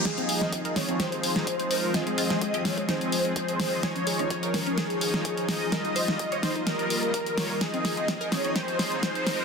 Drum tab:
HH |xxo-xxoxxxoxxxo-|xxoxxxoxxxoxxxo-|xxoxxxoxxxoxxxo-|xxoxxxoxxxoxxxo-|
SD |o--o--o-o--o----|o--o--o-o-----o-|o-----o-o--o--o-|o--o--o-o-----o-|
BD |o---o---o---o---|o---o--oo---o---|o---o---o---o---|o---o--oo---o---|

HH |xxoxxxoxxxoxxxo-|
SD |o-o-o-o-o-o-o-o-|
BD |o---o---o---o---|